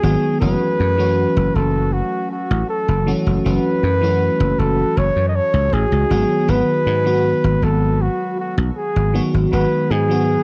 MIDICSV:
0, 0, Header, 1, 4, 480
1, 0, Start_track
1, 0, Tempo, 759494
1, 262, Time_signature, 4, 2, 24, 8
1, 6592, End_track
2, 0, Start_track
2, 0, Title_t, "Flugelhorn"
2, 0, Program_c, 0, 56
2, 0, Note_on_c, 0, 68, 102
2, 238, Note_off_c, 0, 68, 0
2, 260, Note_on_c, 0, 71, 121
2, 982, Note_on_c, 0, 69, 101
2, 991, Note_off_c, 0, 71, 0
2, 1220, Note_on_c, 0, 66, 103
2, 1230, Note_off_c, 0, 69, 0
2, 1459, Note_off_c, 0, 66, 0
2, 1462, Note_on_c, 0, 66, 96
2, 1685, Note_off_c, 0, 66, 0
2, 1703, Note_on_c, 0, 69, 109
2, 1991, Note_off_c, 0, 69, 0
2, 2181, Note_on_c, 0, 71, 125
2, 2900, Note_on_c, 0, 69, 107
2, 2910, Note_off_c, 0, 71, 0
2, 3145, Note_on_c, 0, 73, 122
2, 3154, Note_off_c, 0, 69, 0
2, 3336, Note_off_c, 0, 73, 0
2, 3340, Note_on_c, 0, 75, 84
2, 3386, Note_on_c, 0, 73, 115
2, 3395, Note_off_c, 0, 75, 0
2, 3623, Note_on_c, 0, 68, 112
2, 3633, Note_off_c, 0, 73, 0
2, 4108, Note_on_c, 0, 71, 123
2, 4118, Note_off_c, 0, 68, 0
2, 4826, Note_on_c, 0, 69, 104
2, 4836, Note_off_c, 0, 71, 0
2, 5065, Note_on_c, 0, 66, 104
2, 5075, Note_off_c, 0, 69, 0
2, 5304, Note_off_c, 0, 66, 0
2, 5308, Note_on_c, 0, 66, 92
2, 5409, Note_off_c, 0, 66, 0
2, 5543, Note_on_c, 0, 68, 102
2, 5831, Note_off_c, 0, 68, 0
2, 6020, Note_on_c, 0, 71, 112
2, 6263, Note_on_c, 0, 68, 112
2, 6272, Note_off_c, 0, 71, 0
2, 6592, Note_off_c, 0, 68, 0
2, 6592, End_track
3, 0, Start_track
3, 0, Title_t, "FM electric piano"
3, 0, Program_c, 1, 5
3, 0, Control_c, 1, 64, 127
3, 16, Note_on_c, 1, 51, 88
3, 19, Note_on_c, 1, 54, 82
3, 21, Note_on_c, 1, 56, 81
3, 24, Note_on_c, 1, 59, 81
3, 27, Note_on_c, 1, 66, 98
3, 231, Note_off_c, 1, 51, 0
3, 232, Note_off_c, 1, 54, 0
3, 233, Note_off_c, 1, 56, 0
3, 235, Note_off_c, 1, 59, 0
3, 236, Note_off_c, 1, 66, 0
3, 256, Note_on_c, 1, 52, 82
3, 258, Note_on_c, 1, 54, 76
3, 262, Note_on_c, 1, 57, 76
3, 265, Note_on_c, 1, 61, 79
3, 267, Note_on_c, 1, 66, 95
3, 271, Control_c, 1, 64, 0
3, 372, Control_c, 1, 64, 127
3, 592, Note_off_c, 1, 52, 0
3, 593, Note_off_c, 1, 54, 0
3, 595, Note_off_c, 1, 57, 0
3, 596, Note_off_c, 1, 61, 0
3, 597, Note_off_c, 1, 66, 0
3, 613, Note_on_c, 1, 52, 89
3, 617, Note_on_c, 1, 54, 80
3, 623, Note_on_c, 1, 57, 81
3, 626, Note_on_c, 1, 61, 82
3, 631, Note_on_c, 1, 66, 98
3, 1908, Note_off_c, 1, 52, 0
3, 1910, Note_off_c, 1, 54, 0
3, 1913, Note_off_c, 1, 57, 0
3, 1915, Note_off_c, 1, 61, 0
3, 1917, Note_off_c, 1, 66, 0
3, 1937, Note_on_c, 1, 52, 90
3, 1939, Note_on_c, 1, 54, 83
3, 1942, Note_on_c, 1, 57, 82
3, 1946, Note_on_c, 1, 61, 82
3, 1947, Note_on_c, 1, 66, 98
3, 2151, Note_off_c, 1, 52, 0
3, 2152, Note_off_c, 1, 54, 0
3, 2154, Note_off_c, 1, 57, 0
3, 2156, Note_off_c, 1, 61, 0
3, 2156, Note_off_c, 1, 66, 0
3, 2178, Note_on_c, 1, 52, 83
3, 2180, Note_on_c, 1, 54, 79
3, 2183, Note_on_c, 1, 57, 76
3, 2186, Note_on_c, 1, 61, 77
3, 2187, Note_on_c, 1, 66, 92
3, 2513, Note_off_c, 1, 52, 0
3, 2514, Note_off_c, 1, 54, 0
3, 2515, Note_off_c, 1, 57, 0
3, 2517, Note_off_c, 1, 61, 0
3, 2517, Note_off_c, 1, 66, 0
3, 2534, Note_on_c, 1, 52, 89
3, 2538, Note_on_c, 1, 54, 80
3, 2543, Note_on_c, 1, 57, 79
3, 2547, Note_on_c, 1, 61, 81
3, 2553, Note_on_c, 1, 66, 96
3, 3829, Note_off_c, 1, 52, 0
3, 3831, Note_off_c, 1, 54, 0
3, 3833, Note_off_c, 1, 57, 0
3, 3835, Note_off_c, 1, 61, 0
3, 3838, Note_off_c, 1, 66, 0
3, 3855, Note_on_c, 1, 51, 89
3, 3858, Note_on_c, 1, 54, 82
3, 3860, Note_on_c, 1, 56, 81
3, 3864, Note_on_c, 1, 59, 85
3, 3865, Note_on_c, 1, 66, 102
3, 3871, Control_c, 1, 64, 0
3, 3971, Control_c, 1, 64, 127
3, 4070, Note_off_c, 1, 51, 0
3, 4072, Note_off_c, 1, 54, 0
3, 4072, Note_off_c, 1, 56, 0
3, 4075, Note_off_c, 1, 59, 0
3, 4075, Note_off_c, 1, 66, 0
3, 4093, Note_on_c, 1, 51, 83
3, 4096, Note_on_c, 1, 54, 78
3, 4096, Note_on_c, 1, 56, 76
3, 4100, Note_on_c, 1, 59, 78
3, 4103, Note_on_c, 1, 66, 92
3, 4430, Note_off_c, 1, 51, 0
3, 4431, Note_off_c, 1, 54, 0
3, 4432, Note_off_c, 1, 56, 0
3, 4433, Note_off_c, 1, 59, 0
3, 4435, Note_off_c, 1, 66, 0
3, 4450, Note_on_c, 1, 51, 87
3, 4456, Note_on_c, 1, 54, 79
3, 4462, Note_on_c, 1, 59, 80
3, 4467, Note_on_c, 1, 66, 98
3, 5747, Note_off_c, 1, 51, 0
3, 5750, Note_off_c, 1, 54, 0
3, 5753, Note_off_c, 1, 59, 0
3, 5755, Note_off_c, 1, 66, 0
3, 5774, Note_on_c, 1, 51, 92
3, 5778, Note_on_c, 1, 54, 80
3, 5778, Note_on_c, 1, 56, 83
3, 5782, Note_on_c, 1, 59, 84
3, 5786, Note_on_c, 1, 66, 102
3, 5990, Note_off_c, 1, 51, 0
3, 5991, Note_off_c, 1, 54, 0
3, 5992, Note_off_c, 1, 56, 0
3, 5994, Note_off_c, 1, 59, 0
3, 5996, Note_off_c, 1, 66, 0
3, 6016, Note_on_c, 1, 51, 87
3, 6017, Note_on_c, 1, 54, 78
3, 6020, Note_on_c, 1, 56, 80
3, 6021, Note_on_c, 1, 59, 76
3, 6024, Note_on_c, 1, 66, 96
3, 6351, Note_off_c, 1, 51, 0
3, 6352, Note_off_c, 1, 54, 0
3, 6354, Note_off_c, 1, 56, 0
3, 6354, Note_off_c, 1, 59, 0
3, 6355, Note_off_c, 1, 66, 0
3, 6373, Note_on_c, 1, 51, 86
3, 6378, Note_on_c, 1, 54, 81
3, 6382, Note_on_c, 1, 56, 80
3, 6388, Note_on_c, 1, 59, 80
3, 6392, Note_on_c, 1, 66, 100
3, 6592, Note_off_c, 1, 51, 0
3, 6592, Note_off_c, 1, 54, 0
3, 6592, Note_off_c, 1, 56, 0
3, 6592, Note_off_c, 1, 59, 0
3, 6592, Note_off_c, 1, 66, 0
3, 6592, End_track
4, 0, Start_track
4, 0, Title_t, "Slap bass"
4, 0, Program_c, 2, 36
4, 21, Note_on_c, 2, 32, 99
4, 96, Note_off_c, 2, 32, 0
4, 262, Note_on_c, 2, 30, 100
4, 337, Note_off_c, 2, 30, 0
4, 505, Note_on_c, 2, 42, 100
4, 789, Note_off_c, 2, 42, 0
4, 863, Note_on_c, 2, 30, 102
4, 936, Note_off_c, 2, 30, 0
4, 982, Note_on_c, 2, 30, 81
4, 1268, Note_off_c, 2, 30, 0
4, 1584, Note_on_c, 2, 33, 104
4, 1656, Note_off_c, 2, 33, 0
4, 1822, Note_on_c, 2, 30, 96
4, 1968, Note_off_c, 2, 30, 0
4, 2063, Note_on_c, 2, 30, 89
4, 2136, Note_off_c, 2, 30, 0
4, 2185, Note_on_c, 2, 30, 100
4, 2258, Note_off_c, 2, 30, 0
4, 2421, Note_on_c, 2, 42, 98
4, 2708, Note_off_c, 2, 42, 0
4, 2782, Note_on_c, 2, 30, 106
4, 2855, Note_off_c, 2, 30, 0
4, 2901, Note_on_c, 2, 30, 81
4, 3050, Note_off_c, 2, 30, 0
4, 3141, Note_on_c, 2, 30, 96
4, 3216, Note_off_c, 2, 30, 0
4, 3261, Note_on_c, 2, 42, 80
4, 3408, Note_off_c, 2, 42, 0
4, 3499, Note_on_c, 2, 37, 86
4, 3616, Note_off_c, 2, 37, 0
4, 3619, Note_on_c, 2, 33, 89
4, 3695, Note_off_c, 2, 33, 0
4, 3741, Note_on_c, 2, 37, 101
4, 3815, Note_off_c, 2, 37, 0
4, 3858, Note_on_c, 2, 32, 99
4, 3935, Note_off_c, 2, 32, 0
4, 4099, Note_on_c, 2, 32, 105
4, 4175, Note_off_c, 2, 32, 0
4, 4338, Note_on_c, 2, 44, 103
4, 4626, Note_off_c, 2, 44, 0
4, 4703, Note_on_c, 2, 32, 104
4, 4775, Note_off_c, 2, 32, 0
4, 4817, Note_on_c, 2, 32, 86
4, 5106, Note_off_c, 2, 32, 0
4, 5420, Note_on_c, 2, 35, 104
4, 5494, Note_off_c, 2, 35, 0
4, 5663, Note_on_c, 2, 32, 100
4, 5809, Note_off_c, 2, 32, 0
4, 5904, Note_on_c, 2, 32, 88
4, 5976, Note_off_c, 2, 32, 0
4, 6022, Note_on_c, 2, 32, 101
4, 6096, Note_off_c, 2, 32, 0
4, 6261, Note_on_c, 2, 44, 102
4, 6547, Note_off_c, 2, 44, 0
4, 6592, End_track
0, 0, End_of_file